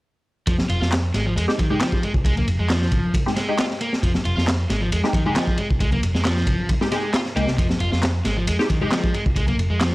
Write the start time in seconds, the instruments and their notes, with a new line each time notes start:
0.47 picked electric bass F1, overdriven electric guitar F3, kick, ride
0.58 snare, high conga
0.69 picked electric bass F1, overdriven electric guitar F4, ride
0.81 picked electric bass F2, overdriven electric guitar F4, snare
0.92 snare, clap, ride
1.14 picked electric bass G#1, overdriven electric guitar G#3, snare, ride
1.26 overdriven electric guitar F3
1.36 picked electric bass F2, overdriven electric guitar G#3, ride
1.48 synth stab G#3 D#4 G4, snare
1.58 overdriven electric guitar D#3, kick, ride, high conga
1.70 overdriven electric guitar G#3, synth stab G#3 D#4 G4, low conga
1.80 overdriven electric guitar F3, snare, clap, ride
1.92 kick
2.03 overdriven electric guitar G#3, ride
2.14 picked electric bass C2, kick
2.25 overdriven electric guitar G#3, kick, ride
2.37 overdriven electric guitar A#3, ride, high conga, low conga
2.47 picked electric bass F1, ride
2.59 picked electric bass F2, overdriven electric guitar G#3
2.70 overdriven electric guitar F3, snare, clap, ride
2.82 snare
2.92 picked electric bass G#1, kick, ride, low conga
3.04 high conga
3.14 kick, ride, low conga
3.26 synth stab G#3 D#4 G4, snare
3.36 overdriven electric guitar G#3, snare, ride
3.49 synth stab G#3 D#4 G4
3.58 overdriven electric guitar F4, snare, clap, ride
3.70 snare
3.81 overdriven electric guitar A#3, ride
3.93 snare
4.03 picked electric bass F1, overdriven electric guitar F3, kick, ride
4.14 snare, high conga
4.25 picked electric bass F1, overdriven electric guitar F4, ride
4.37 picked electric bass F2, overdriven electric guitar F4, snare
4.48 snare, clap, ride
4.69 picked electric bass G#1, overdriven electric guitar G#3, snare, ride
4.81 overdriven electric guitar F3
4.92 picked electric bass F2, overdriven electric guitar G#3, ride
5.04 synth stab G#3 D#4 G4, snare
5.13 overdriven electric guitar D#3, kick, ride, high conga
5.26 overdriven electric guitar G#3, synth stab G#3 D#4 G4, low conga
5.36 overdriven electric guitar F3, snare, clap, ride
5.47 kick
5.58 overdriven electric guitar G#3, ride
5.70 picked electric bass C2, kick
5.80 overdriven electric guitar G#3, kick, ride
5.92 overdriven electric guitar A#3, ride, high conga, low conga
6.02 picked electric bass F1, ride
6.14 picked electric bass F2, overdriven electric guitar G#3, snare
6.25 overdriven electric guitar F3, snare, clap, ride
6.36 snare
6.46 picked electric bass G#1, kick, ride, low conga
6.59 high conga
6.69 kick, ride, low conga
6.81 synth stab G#3 D#4 G4, snare
6.91 synth stab G#3 D#4 G4, overdriven electric guitar G#3, snare, ride
7.14 overdriven electric guitar F4, snare, clap, ride
7.26 snare
7.36 picked electric bass C2, synth stab G#3 D#4 G4, overdriven electric guitar A#3, ride
7.47 picked electric bass C2, snare
7.58 picked electric bass F1, overdriven electric guitar F3, kick, ride
7.69 snare, high conga
7.80 picked electric bass F1, overdriven electric guitar F4, ride
7.92 picked electric bass F2, overdriven electric guitar F4, snare
8.03 snare, clap, ride
8.25 picked electric bass G#1, overdriven electric guitar G#3, snare, ride
8.37 overdriven electric guitar F3
8.47 picked electric bass F2, overdriven electric guitar G#3, ride
8.59 synth stab G#3 D#4 G4, snare
8.69 overdriven electric guitar D#3, kick, ride, high conga
8.81 overdriven electric guitar G#3, synth stab G#3 D#4 G4, low conga
8.92 overdriven electric guitar F3, snare, clap, ride
9.04 kick
9.14 overdriven electric guitar G#3, ride
9.26 picked electric bass C2, kick
9.36 overdriven electric guitar G#3, kick, ride
9.47 overdriven electric guitar A#3, ride, high conga, low conga
9.58 picked electric bass F1, ride
9.70 picked electric bass F2, overdriven electric guitar G#3
9.81 overdriven electric guitar F3, snare, clap, ride